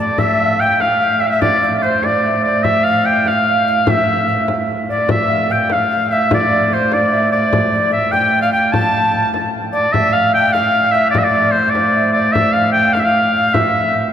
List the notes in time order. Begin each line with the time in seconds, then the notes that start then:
Already playing: A2 G5 A5
0.00 D5
0.18 A2 E5, frame drum
0.41 F5
0.59 G5, frame drum
0.80 F5, frame drum
1.01 F5
1.19 E5 F5, frame drum
1.26 E5 F5
1.32 E5
1.41 D5, frame drum
1.62 D5
1.79 C5 D5
1.83 C5, frame drum
2.03 D5, frame drum
2.24 E5
2.44 D5, frame drum
2.63 E5, frame drum
2.84 F5
3.05 G5, frame drum
3.26 F5, frame drum
3.66 F5, frame drum
3.87 E5, frame drum
4.07 frame drum
4.28 E5, frame drum
4.48 frame drum
4.68 frame drum
4.89 D5, frame drum
5.08 A2 E5, frame drum
5.29 F5
5.50 G5
5.70 F5, frame drum
5.90 F5
6.06 F5
6.11 E5
6.30 D5, frame drum
6.51 D5
6.71 C5, frame drum
6.92 D5, frame drum
7.12 E5
7.32 D5, frame drum
7.53 frame drum
7.72 D5
7.92 E5, frame drum
8.11 G5, frame drum
8.42 F5
8.52 G5, frame drum
8.72 A5, frame drum
9.14 frame drum
9.34 frame drum
9.73 D5, frame drum
9.93 A2 E5, frame drum
10.13 F5
10.34 G5, frame drum
10.53 F5, frame drum
10.91 E5, frame drum
11.11 D5
11.15 E5, frame drum
11.24 D5
11.28 D5
11.51 C5, frame drum
11.70 D5
11.75 D5, frame drum
11.95 E5
12.12 D5, frame drum
12.32 E5, frame drum
12.53 F5
12.72 G5, frame drum
12.93 F5, frame drum
13.00 E5
13.04 F5
13.35 F5, frame drum
13.54 E5, frame drum
13.94 frame drum